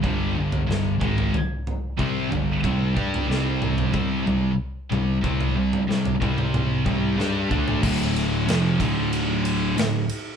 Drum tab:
CC |----------------|----------------|----------------|x---------------|
RD |----------------|----------------|----------------|--x-x-x-x-x-x-x-|
SD |----o-----------|----o-----------|----o-------o---|-oo-o-------o---|
T2 |------o---------|------o---------|------o-o-o----o|----------------|
FT |o--o--ooo-o---o-|o--o--ooo-o---o-|oo-o-oooo-o---o-|----------------|
BD |o-----o-----o---|o-o-----o-------|o-----o---o---o-|o-----o---------|